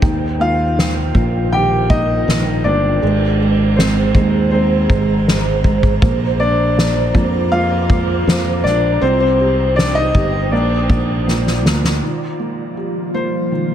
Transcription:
Already playing: ambient pad G5
0.02 fingered electric bass D#2, felt piano D#3, ambient pad F4 A#4, kick, ride
0.40 felt piano A#3, grand piano F4 F5, ride
0.77 felt piano D#3, snare, ride
1.15 fingered electric bass A#1, felt piano A#3, kick, ride
1.52 felt piano D#3, grand piano G4 G5, ride
1.90 felt piano A#3, grand piano D#4 D#5, kick, ride
2.27 fingered electric bass A#1, felt piano D#3, snare, ride
2.64 fingered electric bass G1, felt piano A#3, grand piano D4 D5, ride
3.01 fingered electric bass G#1, felt piano G#3, ambient pad G#4 C5 A#5, ride
3.40 felt piano G#3, ride
3.76 felt piano G#3, grand piano C4 C5, snare, ride
4.15 fingered electric bass D#2, felt piano G#3, kick, ride
4.51 felt piano G#3, grand piano C4 C5, ride
4.89 fingered electric bass G#1, felt piano G#3, kick, ride
5.27 felt piano G#3, snare, ride
5.64 felt piano G#3, kick, ride
5.83 kick
6.02 fingered electric bass A#1, felt piano A#3, ambient pad F4 D6, kick, ride
6.40 felt piano A#3, grand piano D4 D5, ride
6.77 felt piano A#3, snare, ride
7.14 fingered electric bass F2, felt piano A#3, kick, ride
7.52 felt piano A#3, grand piano F4 F5, ride
7.90 felt piano A#3, kick, ride
8.27 fingered electric bass F2, felt piano A#3, snare, ride
8.64 fingered electric bass A#1, felt piano A#3, grand piano D4 D5, snare, ride
9.02 fingered electric bass C2, felt piano C4, grand piano C4 C5, ambient pad D#4 G5 D#6, ride
9.20 grand piano C4 C5
9.40 felt piano G4, ride
9.76 felt piano C4, grand piano D4 D5, snare, ride
9.95 grand piano D#4 D#5
10.15 fingered electric bass G1, felt piano G4, kick, ride
10.52 fingered electric bass A#1, felt piano A#3, grand piano D4 D5, ambient pad F4 D5 A#5 D6, ride
10.90 fingered electric bass A#1, felt piano A#3, kick, ride
11.27 felt piano A#3, snare
11.47 snare
11.65 fingered electric bass D2, felt piano A#3, snare
11.84 snare
12.02 felt piano D#3, ambient pad D#3 F3 G3 A#3 F4
12.39 felt piano A#3
12.77 felt piano G4
13.14 felt piano A#3, grand piano C5
13.51 felt piano D#3

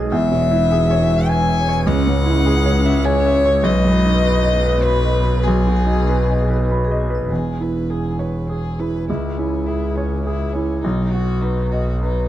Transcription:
Already playing: double bass B1, grand piano B1 B2 D#4 G#4 D#5 G#5, ambient pad G#3 D#4 B4
0.11 double bass E1, grand piano E2, vibraphone E4, ambient pad E4 C#5, violin E5
0.27 vibraphone C#5
0.32 grand piano B2
0.42 vibraphone C#5
0.51 grand piano E4
0.56 vibraphone E4
0.71 grand piano G#4, vibraphone C#5
0.86 vibraphone G#4
0.91 grand piano C#5
0.99 vibraphone E4
1.11 vibraphone B4, grand piano E5
1.28 vibraphone B4, violin G#5, grand piano G#5
1.44 vibraphone E4
1.49 grand piano E5
1.58 vibraphone C#5
1.69 grand piano C#5
1.73 vibraphone B4
1.87 grand piano C#2, double bass C#2, vibraphone C#4, violin F#5
2.02 vibraphone C#5
2.07 grand piano G#2
2.17 vibraphone C#5
2.26 grand piano E4
2.31 vibraphone C#4
2.46 grand piano G#4, vibraphone C#5
2.61 vibraphone E4
2.66 grand piano C#5
2.76 vibraphone C#4
2.85 grand piano E5
2.92 vibraphone G#4
3.05 vibraphone G#4, violin C#5, grand piano G#5
3.20 vibraphone C#4
3.26 grand piano E5
3.35 vibraphone C#5
3.46 grand piano C#5
3.51 vibraphone G#4
3.63 grand piano B1, double bass B1, ambient pad B3 F#4 B4, vibraphone B4, violin D#5
3.80 vibraphone B5
3.85 grand piano F#2
3.96 vibraphone B5
4.06 grand piano D#4, vibraphone B4
4.24 grand piano B4, vibraphone B5
4.44 grand piano D#5
4.54 vibraphone B4
4.65 grand piano B4, vibraphone F#5
4.83 violin B4, vibraphone F#5, grand piano B5
4.99 vibraphone B4
5.05 grand piano D#5
5.15 vibraphone B5
5.25 grand piano B4
5.30 vibraphone F#5
5.44 grand piano B1, ambient pad D#4, violin G#4, vibraphone G#4
5.61 vibraphone G#5
5.67 grand piano B2
5.76 vibraphone G#5
5.86 grand piano D#4
5.91 vibraphone G#4
6.07 grand piano B4, vibraphone G#5
6.23 vibraphone B4
6.30 grand piano D#5
6.38 vibraphone G#4
6.50 grand piano B4, vibraphone D#5
6.70 vibraphone D#5, grand piano B5
6.85 vibraphone G#4
6.91 grand piano D#5
7.00 vibraphone G#5
7.10 grand piano B4
7.15 vibraphone D#5
7.30 double bass E1, grand piano E2, violin G#4
7.61 grand piano E4, violin B4
7.90 violin G#4, grand piano G#4
8.19 violin B4, grand piano C#5
8.49 grand piano G#4, violin G#4
8.79 grand piano E4, violin B4
9.08 double bass C#2, grand piano C#2, violin E4
9.36 violin C#4, grand piano E4
9.66 violin E4, grand piano G#4
9.95 violin C#4, grand piano C#5
10.24 violin E4, grand piano G#4
10.53 violin C#4, grand piano E4
10.82 double bass B1, grand piano B1, violin D#4
11.11 violin F#4, grand piano F#4
11.41 violin D#4, grand piano B4
11.71 violin F#4, grand piano D#5
12.01 violin D#4, grand piano B4

